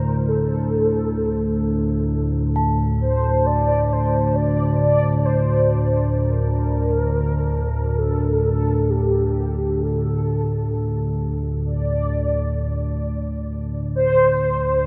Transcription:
Already playing: synth drone D2 A2, soft synth lead A#4
0.28 soft synth lead A4
2.56 singing bowl A5
3.01 soft synth lead C5
3.46 soft synth lead D5
3.92 soft synth lead C5
4.35 soft synth lead D5
4.80 soft synth lead D5
5.25 soft synth lead C5
6.15 soft synth lead A#4
7.98 soft synth lead A4
8.43 soft synth lead A4
8.90 soft synth lead G4
9.82 soft synth lead A4
11.66 soft synth lead D5
13.96 soft synth lead C5

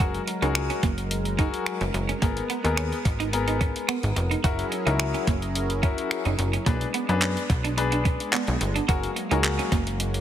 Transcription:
Already playing: analog synth pad G#3
0.00 analog synth bass F#1, analog synth pad F#3 A#4, grand piano F#4 G#4 A#4, kick, closed hi-hat
0.14 closed hi-hat
0.28 muted clean electric guitar stroke, closed hi-hat
0.42 analog synth bass C#2, clean electric guitar D#4, grand piano F#4 G#4 A#4, closed hi-hat
0.55 finger snap, muted clean electric guitar stroke, closed hi-hat
0.70 clean electric guitar C#4, closed hi-hat
0.83 analog synth bass F#1, clean electric guitar A#3, kick, closed hi-hat
0.98 closed hi-hat
1.11 closed hi-hat
1.25 closed hi-hat
1.38 clean electric guitar D#4, grand piano F#4 G#4 A#4, kick, closed hi-hat
1.54 closed hi-hat
1.66 finger snap, closed hi-hat
1.81 analog synth bass F#1, clean electric guitar C#4, closed hi-hat
1.94 analog synth bass F#1, muted clean electric guitar stroke, closed hi-hat
2.09 clean electric guitar C#4, closed hi-hat
2.22 analog synth bass G#1, clean electric guitar A#3, grand piano B3 G#4 A#4, analog synth pad B3, kick, closed hi-hat
2.37 closed hi-hat
2.50 clean electric guitar B3, closed hi-hat
2.64 analog synth bass D#2, grand piano B3 G#4 A#4, muted clean electric guitar stroke, closed hi-hat
2.77 clean electric guitar C#4, finger snap, closed hi-hat
2.92 closed hi-hat
3.05 analog synth bass G#1, muted clean electric guitar stroke, kick, closed hi-hat
3.20 clean electric guitar D#4, closed hi-hat
3.33 grand piano B3 G#4 A#4, muted clean electric guitar stroke, closed hi-hat
3.48 clean electric guitar D#4, closed hi-hat
3.61 clean electric guitar C#4, kick, closed hi-hat
3.76 closed hi-hat
3.88 clean electric guitar B3, finger snap, closed hi-hat
4.03 analog synth bass G#1, closed hi-hat
4.16 analog synth bass F1, muted clean electric guitar stroke, closed hi-hat
4.31 clean electric guitar D#4, closed hi-hat
4.44 analog synth bass F#1, analog synth pad F#3 C#4 E4 G#4 A#4, grand piano E4 F#4 A#4, clean electric guitar F#4, kick, closed hi-hat
4.59 closed hi-hat
4.72 muted clean electric guitar stroke, closed hi-hat
4.86 analog synth bass C#2, clean electric guitar D#4, grand piano E4 F#4 A#4, closed hi-hat
4.99 finger snap, muted clean electric guitar stroke, closed hi-hat
5.14 clean electric guitar C#4, closed hi-hat
5.27 analog synth bass F#1, clean electric guitar A#3, kick, closed hi-hat
5.42 closed hi-hat
5.55 closed hi-hat
5.70 closed hi-hat
5.83 clean electric guitar C#4, grand piano E4 F#4 A#4, kick, closed hi-hat
5.98 closed hi-hat
6.11 finger snap, closed hi-hat
6.25 analog synth bass F#1, clean electric guitar D#4, closed hi-hat
6.39 analog synth bass F#1, muted clean electric guitar stroke, closed hi-hat
6.53 clean electric guitar C#4, closed hi-hat
6.66 analog synth bass B1, analog synth pad G#3 B3 D4, clean electric guitar A#3, grand piano D4 G#4 B4, kick, closed hi-hat
6.81 closed hi-hat
6.94 clean electric guitar B3, closed hi-hat
7.09 analog synth bass F#2, grand piano D4 G#4 B4, muted clean electric guitar stroke, closed hi-hat
7.22 clean electric guitar C#4, clap, closed hi-hat
7.37 closed hi-hat
7.50 analog synth bass B1, muted clean electric guitar stroke, kick, closed hi-hat
7.64 clean electric guitar D4, closed hi-hat
7.77 grand piano D4 G#4 B4, muted clean electric guitar stroke, closed hi-hat
7.92 clean electric guitar D4, closed hi-hat
8.05 clean electric guitar C#4, kick, closed hi-hat
8.20 closed hi-hat
8.33 clean electric guitar B3, clap, closed hi-hat
8.47 analog synth bass B1, closed hi-hat
8.61 analog synth bass G1, muted clean electric guitar stroke, closed hi-hat
8.76 clean electric guitar D4, closed hi-hat
8.88 analog synth bass F#1, analog synth pad F#3 A#3, clean electric guitar F#4, grand piano F#4 G#4 A#4, kick, closed hi-hat
9.03 closed hi-hat
9.16 muted clean electric guitar stroke, closed hi-hat
9.31 analog synth bass C#2, clean electric guitar D#4, grand piano F#4 G#4 A#4, closed hi-hat
9.44 muted clean electric guitar stroke, clap, closed hi-hat
9.59 clean electric guitar C#4, closed hi-hat
9.72 analog synth bass F#1, clean electric guitar A#3, kick, closed hi-hat
9.87 closed hi-hat
10.00 closed hi-hat
10.14 closed hi-hat

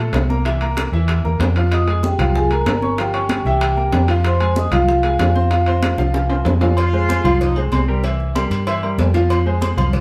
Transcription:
Already playing: fingered electric bass A#2
0.00 grand piano A3 A4 A5
0.13 fingered electric bass C2, high bongo, low bongo, high conga, high timbale, low timbale
0.29 grand piano A#3 A#4 A#5, high bongo, high conga
0.45 grand piano E3 E4 E5, high bongo, high conga, high timbale
0.61 grand piano A#3 A#4 A#5, high conga, high timbale
0.77 high bongo, high conga, high timbale, low timbale
0.92 fingered electric bass E2, grand piano E3 E4 E5, high bongo
1.08 high bongo, high conga, high timbale
1.24 fingered electric bass E2, grand piano A#3 A#4 A#5, high bongo, high conga
1.39 fingered electric bass F2, high bongo, low bongo, high conga, high timbale, low timbale
1.56 grand piano F3 F4 F5, high timbale
1.72 vibraphone D#5 D#6, high bongo, high conga, high timbale
1.87 grand piano G#3 G#4 G#5, high conga, high timbale
2.03 vibraphone G4 G5, high bongo, high conga, low timbale
2.19 fingered electric bass C2, grand piano F3 F4 F5, high bongo, high conga, low conga, high timbale
2.35 vibraphone G#4 G#5, high bongo, high conga, low conga
2.50 grand piano G#3 G#4 G#5, vibraphone A#4 A#5, high bongo, high conga, high timbale
2.66 fingered electric bass G1, high bongo, low bongo, high conga, high timbale, low timbale
2.82 grand piano C#4 C#5 C#6, high bongo, high conga
2.98 grand piano F3 F4 F5, vibraphone G4 G5, high bongo, high conga, high timbale
3.14 grand piano C#4 C#5 C#6, high conga, high timbale
3.29 high bongo, high conga, high timbale, low timbale
3.45 fingered electric bass C2, grand piano E3 E4 E5, vibraphone G4 G5, high bongo
3.61 high bongo, high conga, high timbale
3.77 grand piano A#3 A#4 A#5, high bongo, high conga
3.92 fingered electric bass F2, high bongo, low bongo, high conga, high timbale, low timbale
4.08 grand piano F3 F4 F5, high timbale
4.24 vibraphone C5 C6, high bongo, high conga, high timbale
4.40 grand piano G#3 G#4 G#5, high conga, high timbale
4.56 vibraphone D#5 D#6, high bongo, high conga, low timbale
4.71 fingered electric bass C2, grand piano F3 F4 F5, vibraphone F4 F5, high bongo, high conga, low conga, high timbale
4.88 high bongo, high conga
5.03 grand piano G#3 G#4 G#5, high bongo, high conga, high timbale
5.19 fingered electric bass F2, high bongo, low bongo, high conga, high timbale, low timbale
5.35 grand piano C4 C5 C6, high bongo, high conga
5.51 grand piano F3 F4 F5, high bongo, high conga, high timbale
5.66 grand piano C4 C5 C6, high conga, high timbale
5.83 high bongo, high conga, high timbale, low timbale
5.98 fingered electric bass C2, grand piano F3 F4 F5, high bongo
6.14 high bongo, high conga, high timbale
6.30 grand piano C4 C5 C6, high conga, high timbale
6.45 fingered electric bass F2, low bongo, high conga, low timbale
6.61 grand piano F3 F4 F5, low bongo, low timbale
6.77 trombone section F4, cowbell, high conga, low agogo
6.93 grand piano G#3 G#4 C5, high conga
7.08 grand piano G#3 G#4 C5, cowbell, high conga, low timbale, low agogo
7.24 fingered electric bass C2, grand piano F3 F4 F5, high conga, low conga, low agogo
7.40 trombone section D#4, cowbell, high conga, low conga
7.56 grand piano G#3 G#4 C5, high conga, low agogo
7.65 trombone section C4
7.72 fingered electric bass C2, cowbell, high conga, low timbale, low agogo
7.88 grand piano G3 G4 A#4
8.04 grand piano E3 E4 E5, cowbell, high conga, low agogo
8.20 high conga
8.35 grand piano G3 G4 A#4, cowbell, high conga, low timbale, low agogo
8.50 fingered electric bass G2, cowbell, low agogo
8.67 grand piano E3 E4 E5, cowbell, high conga, low agogo
8.83 grand piano G3 G4 A#4, high conga, low agogo
8.98 fingered electric bass F2, cowbell, high conga, low timbale
9.14 grand piano F3 F4 F5, cowbell, high conga
9.30 cowbell, high conga, low agogo
9.46 grand piano G#3 G#4 C5, high conga
9.61 grand piano G#3 G#4 C5, cowbell, high conga, low timbale, low agogo
9.77 fingered electric bass C2, grand piano F3 F4 F5, high conga, low conga, low agogo
9.93 cowbell, high conga, low conga

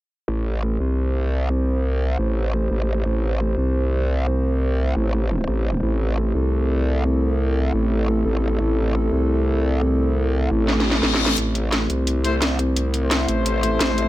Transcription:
0.28 wobble bass A1, analog synth pad A3 C4 E4 C5
0.80 wobble bass C2
2.19 wobble bass A1
2.71 wobble bass A1
3.05 wobble bass A1
3.57 wobble bass C2
4.96 wobble bass A1
5.48 wobble bass A1
5.83 wobble bass A1, analog synth pad A4
6.35 wobble bass C2
7.74 wobble bass A1
8.26 wobble bass A1
8.60 wobble bass A1
9.12 wobble bass C2
10.51 wobble bass A1
10.68 snare, reverse cymbal
10.80 snare
10.91 snare
11.03 wobble bass A1, snare
11.15 snare
11.26 snare
11.38 wobble bass A1, analog synth pad C5, closed hi-hat
11.55 closed hi-hat
11.72 snare, closed hi-hat
11.90 wobble bass C2, closed hi-hat
12.07 closed hi-hat
12.24 brass ensemble A3 E4 C5, closed hi-hat
12.42 snare, closed hi-hat
12.59 closed hi-hat
12.76 closed hi-hat
12.94 closed hi-hat
13.03 brass ensemble A3 E4 C5
13.11 snare, closed hi-hat
13.28 wobble bass A1, closed hi-hat
13.46 closed hi-hat
13.63 closed hi-hat
13.81 wobble bass A1, snare, closed hi-hat
13.98 closed hi-hat

